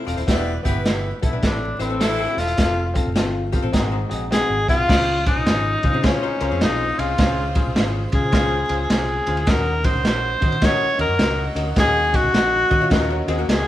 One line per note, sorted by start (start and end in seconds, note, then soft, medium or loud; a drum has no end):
0.06 0.15 E1 medium
0.06 0.20 C4 medium
0.06 0.20 F4 medium
0.06 0.17 F4 medium
0.06 0.20 A4 medium
0.06 0.17 D5 medium
0.06 0.20 F5 medium
0.06 closed hi-hat medium
0.17 0.26 D#1 medium
0.17 0.45 E4 medium
0.17 0.45 C5 medium
0.17 closed hi-hat medium
0.27 0.57 E1 medium
0.27 1.18 E3 medium
0.27 0.51 B3 loud
0.27 0.58 D4 loud
0.27 0.51 E4 loud
0.27 0.51 G4 loud
0.27 0.58 B4 medium
0.27 0.58 D5 loud
0.27 0.51 E5 loud
0.27 kick loud
0.27 snare loud
0.27 closed hi-hat medium
0.63 1.11 G1 medium
0.63 1.19 G3 medium
0.63 0.77 B3 loud
0.63 0.78 E4 medium
0.63 1.19 E4 medium
0.63 0.78 G4 loud
0.63 1.19 B4 loud
0.63 0.78 E5 loud
0.63 kick medium
0.63 closed hi-hat medium
0.84 1.08 B3 medium
0.84 1.08 E4 medium
0.84 1.09 G4 medium
0.84 1.09 E5 medium
0.84 snare loud
0.84 closed hi-hat medium
1.21 1.39 B1 medium
1.21 1.35 B3 medium
1.21 1.35 E4 medium
1.21 1.47 E4 medium
1.21 1.35 G4 medium
1.21 1.32 A4 medium
1.21 1.35 E5 medium
1.21 kick medium
1.21 closed hi-hat medium
1.33 1.43 D4 medium
1.33 1.43 B4 medium
1.42 1.72 A1 loud
1.42 2.33 A2 medium
1.42 1.66 C4 medium
1.42 1.80 D4 medium
1.42 1.66 E4 medium
1.42 1.66 A4 medium
1.42 1.78 D5 medium
1.42 1.66 E5 medium
1.42 kick medium
1.42 snare loud
1.42 closed hi-hat medium
1.79 2.25 A1 medium
1.79 1.93 C4 medium
1.79 2.03 C4 medium
1.79 1.90 E4 medium
1.79 1.93 E4 medium
1.79 1.93 A4 medium
1.79 1.94 B4 medium
1.79 1.89 C5 medium
1.79 closed hi-hat medium
1.90 2.55 C4 medium
1.90 2.55 A4 medium
1.99 2.45 E3 loud
1.99 2.23 C4 medium
1.99 2.45 C4 loud
1.99 2.24 E4 medium
1.99 2.41 E4 loud
1.99 2.45 A4 loud
1.99 2.24 A4 medium
1.99 2.24 E5 medium
1.99 snare loud
1.99 closed hi-hat loud
2.37 2.54 E1 medium
2.37 2.50 C4 medium
2.37 2.51 E4 medium
2.37 2.96 F4 loud
2.37 2.51 A4 medium
2.37 2.52 E5 medium
2.37 snare soft
2.37 closed hi-hat medium
2.48 closed hi-hat medium
2.57 2.96 F1 medium
2.57 2.81 C4 medium
2.57 2.81 F4 medium
2.57 2.82 A4 medium
2.57 2.82 F5 loud
2.57 kick loud
2.57 snare loud
2.57 closed hi-hat loud
2.94 3.08 C4 medium
2.94 3.08 F4 medium
2.94 3.08 A4 medium
2.94 3.08 F5 loud
2.94 kick loud
2.94 closed hi-hat medium
3.06 3.16 F1 medium
3.16 3.54 G1 medium
3.16 3.51 A3 medium
3.16 3.39 C4 medium
3.16 3.51 F4 medium
3.16 3.39 F4 medium
3.16 3.39 A4 medium
3.16 3.40 F5 loud
3.16 snare loud
3.16 closed hi-hat medium
3.52 3.62 B3 medium
3.52 3.66 C4 medium
3.52 3.66 F4 medium
3.52 3.62 G4 medium
3.52 3.66 A4 medium
3.52 3.67 F5 medium
3.52 kick medium
3.52 closed hi-hat medium
3.62 3.71 A1 medium
3.62 3.73 C4 medium
3.62 3.73 A4 medium
3.72 4.03 G#1 loud
3.72 4.64 G#2 medium
3.72 3.96 C4 loud
3.72 3.96 F#4 medium
3.72 3.97 G#4 medium
3.72 3.91 A#4 medium
3.72 3.97 D#5 loud
3.72 kick medium
3.72 snare loud
3.72 closed hi-hat medium
3.92 4.74 D#4 medium
3.92 4.74 C5 medium
4.09 4.42 A#1 medium
4.09 4.23 C4 medium
4.09 4.23 F#4 medium
4.09 4.23 G#4 medium
4.09 4.24 D#5 loud
4.09 closed hi-hat medium
4.31 4.54 C4 loud
4.31 4.54 F#4 medium
4.31 4.55 G#4 loud
4.31 4.66 G#4 loud
4.31 4.55 D#5 loud
4.31 snare loud
4.31 closed hi-hat loud
4.50 4.64 G#1 medium
4.68 4.85 C2 medium
4.68 4.81 C4 medium
4.68 5.22 F4 loud
4.68 4.81 F#4 medium
4.68 4.81 G#4 medium
4.68 4.82 F#5 loud
4.68 kick medium
4.68 snare soft
4.68 closed hi-hat medium
4.88 5.26 C#2 loud
4.88 5.79 C#3 medium
4.88 5.11 C#4 loud
4.88 5.12 F4 medium
4.88 5.12 G#4 medium
4.88 5.12 C5 loud
4.88 5.12 F5 loud
4.88 kick loud
4.88 snare loud
4.88 crash loud
5.26 5.38 C#4 medium
5.26 6.06 D#4 loud
5.26 5.39 F4 medium
5.26 5.39 G#4 medium
5.26 5.39 C5 medium
5.26 5.39 G#5 medium
5.26 kick medium
5.26 ride medium
5.36 5.48 C2 medium
5.46 5.76 G#1 loud
5.46 5.69 C#4 medium
5.46 5.69 F4 medium
5.46 5.69 G#4 medium
5.46 5.69 C5 medium
5.46 5.70 G#5 medium
5.46 snare loud
5.46 ride medium
5.83 6.14 C#3 loud
5.83 5.96 C#4 medium
5.83 5.96 F4 medium
5.83 5.96 G#4 medium
5.83 5.96 C5 medium
5.83 5.97 F5 medium
5.83 kick loud
5.83 ride medium
5.94 6.21 C4 medium
5.94 6.21 G#4 medium
6.03 6.26 C#4 loud
6.03 6.65 C#4 loud
6.03 6.27 F4 loud
6.03 6.27 G#4 loud
6.03 6.27 C5 loud
6.03 9.24 C5 medium
6.03 6.27 F5 loud
6.03 kick medium
6.03 snare loud
6.03 ride medium
6.23 6.40 D#4 medium
6.23 6.40 C5 medium
6.40 6.49 C#2 loud
6.40 6.53 C#4 medium
6.40 6.51 C#4 medium
6.40 6.54 F4 medium
6.40 6.54 G#4 medium
6.40 6.50 A#4 loud
6.40 6.54 C5 medium
6.40 6.54 F5 medium
6.40 ride medium
6.51 6.64 F2 medium
6.51 7.33 C4 medium
6.51 7.33 G#4 medium
6.60 6.91 B1 loud
6.60 6.84 C#4 medium
6.60 7.01 D#4 loud
6.60 6.84 F4 medium
6.60 6.84 G#4 medium
6.60 6.84 C5 medium
6.60 6.85 F5 medium
6.60 snare loud
6.60 ride medium
6.97 7.15 C2 medium
6.97 7.10 C#4 medium
6.97 7.11 F4 medium
6.97 7.76 F4 loud
6.97 7.11 G#4 medium
6.97 7.11 C5 medium
6.97 7.11 F5 medium
6.97 ride medium
7.18 7.56 C#2 loud
7.18 8.09 C#3 medium
7.18 7.41 C#4 loud
7.18 7.42 F4 medium
7.18 7.42 G#4 medium
7.18 7.42 C5 medium
7.18 7.42 F5 loud
7.18 kick loud
7.18 snare loud
7.18 ride loud
7.55 7.68 C#4 medium
7.55 7.68 F4 medium
7.55 7.68 G#4 medium
7.55 7.68 C5 medium
7.55 7.69 F5 medium
7.55 kick loud
7.55 ride medium
7.66 7.74 C2 loud
7.75 8.05 G#1 loud
7.75 7.98 C#4 medium
7.75 7.99 F4 medium
7.75 7.99 G#4 medium
7.75 7.99 C5 medium
7.75 7.99 F5 loud
7.75 snare loud
7.75 ride medium
8.12 8.34 C#3 loud
8.12 8.25 C#4 medium
8.12 8.25 F4 medium
8.12 8.26 G#4 medium
8.12 8.87 G#4 medium
8.12 8.26 C5 medium
8.12 8.26 F5 medium
8.12 kick loud
8.12 ride medium
8.32 8.62 C#2 loud
8.32 8.55 C#4 loud
8.32 8.56 F4 loud
8.32 8.56 G#4 loud
8.32 8.56 C5 loud
8.32 8.56 F5 loud
8.32 kick medium
8.32 snare loud
8.32 ride medium
8.68 8.86 C#2 medium
8.68 8.82 C#4 medium
8.68 8.82 F4 medium
8.68 8.82 G#4 medium
8.68 8.82 C5 medium
8.68 8.83 F5 medium
8.68 ride medium
8.90 9.19 C2 medium
8.90 9.13 C#4 medium
8.90 9.13 F4 medium
8.90 9.13 G#4 medium
8.90 9.51 G#4 loud
8.90 9.13 C5 medium
8.90 9.14 F5 medium
8.90 snare loud
8.90 ride medium
9.27 9.43 D2 medium
9.27 9.40 C#4 medium
9.27 9.40 F4 medium
9.27 9.40 G#4 medium
9.27 9.40 C5 medium
9.27 9.41 F5 medium
9.27 ride medium
9.37 ride soft
9.46 10.38 D#3 medium
9.46 9.70 C#4 loud
9.46 9.70 D#4 loud
9.46 9.70 F#4 loud
9.46 9.71 A#4 medium
9.46 9.87 A#4 loud
9.46 9.71 D#5 loud
9.46 kick loud
9.46 snare loud
9.46 ride medium
9.84 9.97 C#4 medium
9.84 9.97 D#4 medium
9.84 9.97 F#4 medium
9.84 9.98 A#4 medium
9.84 10.66 C5 loud
9.84 9.98 D#5 medium
9.84 kick loud
9.84 ride medium
9.95 10.03 C#2 medium
10.04 10.34 A#1 medium
10.04 10.28 C#4 medium
10.04 10.28 D#4 medium
10.04 10.28 F#4 medium
10.04 10.28 A#4 medium
10.04 10.29 D#5 medium
10.04 snare loud
10.04 ride medium
10.40 10.73 D#3 medium
10.40 10.54 C#4 medium
10.40 10.54 D#4 medium
10.40 10.54 F#4 medium
10.40 10.55 A#4 medium
10.40 10.55 D#5 medium
10.40 kick medium
10.40 ride medium
10.52 ride soft
10.61 13.68 A#3 medium
10.61 10.85 C#4 loud
10.61 10.85 D#4 loud
10.61 13.68 F#4 loud
10.61 10.85 F#4 loud
10.61 10.85 A#4 loud
10.61 11.00 C#5 loud
10.61 10.86 D#5 loud
10.61 kick medium
10.61 snare loud
10.61 ride medium
10.98 11.07 D#2 medium
10.98 11.11 C#4 medium
10.98 11.11 D#4 medium
10.98 11.12 F#4 medium
10.98 11.12 A#4 medium
10.98 11.53 A#4 loud
10.98 11.12 D#5 medium
10.98 ride medium
11.09 11.17 F#2 loud
11.19 11.48 C#2 loud
11.19 11.42 C#4 medium
11.19 11.42 D#4 medium
11.19 11.42 F#4 medium
11.19 11.43 A#4 medium
11.19 11.43 D#5 medium
11.19 snare loud
11.19 ride medium
11.55 11.72 D2 loud
11.55 11.68 C#4 medium
11.55 11.69 D#4 medium
11.55 11.69 F#4 medium
11.55 11.69 A#4 medium
11.55 11.69 D#5 medium
11.55 ride medium
11.76 12.14 D#2 loud
11.76 12.67 D#3 medium
11.76 11.99 C#4 loud
11.76 12.00 D#4 medium
11.76 12.00 F#4 medium
11.76 12.17 G#4 loud
11.76 12.00 A#4 medium
11.76 12.00 D#5 loud
11.76 kick loud
11.76 snare loud
11.76 ride medium
12.12 12.26 C#4 medium
12.12 12.26 D#4 medium
12.12 12.26 F#4 medium
12.12 13.29 F#4 loud
12.12 12.26 A#4 medium
12.12 12.26 D#5 medium
12.12 kick loud
12.12 ride medium
12.24 12.32 C#2 medium
12.33 12.63 A#1 loud
12.33 12.56 C#4 medium
12.33 12.56 D#4 medium
12.33 12.56 F#4 medium
12.33 12.57 A#4 medium
12.33 12.57 F#5 medium
12.33 snare loud
12.33 ride medium
12.70 12.87 D#3 medium
12.70 12.83 C#4 medium
12.70 12.83 D#4 medium
12.70 12.84 F#4 medium
12.70 12.81 F#4 medium
12.70 12.84 A#4 medium
12.70 12.80 D#5 medium
12.70 12.84 D#5 medium
12.70 kick medium
12.70 ride medium
12.81 13.08 F4 medium
12.81 13.08 C#5 medium
12.90 13.20 D#2 loud
12.90 13.14 C#4 loud
12.90 13.14 D#4 loud
12.90 13.14 F#4 loud
12.90 13.14 A#4 loud
12.90 13.14 F#5 loud
12.90 kick medium
12.90 snare loud
12.90 ride medium
13.10 13.27 C#4 medium
13.10 13.27 A#4 medium
13.27 13.44 D#2 loud
13.27 13.38 C4 medium
13.27 13.40 C#4 medium
13.27 13.40 D#4 medium
13.27 13.41 F#4 medium
13.27 13.38 G#4 medium
13.27 13.41 A#4 medium
13.27 13.41 D#5 loud
13.27 ride medium
13.38 13.68 A#3 medium
13.38 13.68 F#4 medium
13.48 13.63 C#2 medium
13.48 13.68 C#4 medium
13.48 13.68 D#4 medium
13.48 13.68 F#4 medium
13.48 13.68 G#4 medium
13.48 13.68 A#4 medium
13.48 13.68 D#5 medium
13.48 snare loud
13.48 ride loud